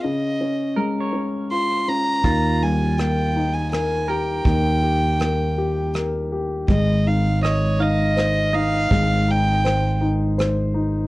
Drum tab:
HH |------|x-x-x-|x-x-x-|x-x-x-|
SD |------|--r-r-|--r-r-|--r-r-|
BD |------|o-----|o-----|o-----|

HH |x-x-x-|
SD |--r-r-|
BD |o-----|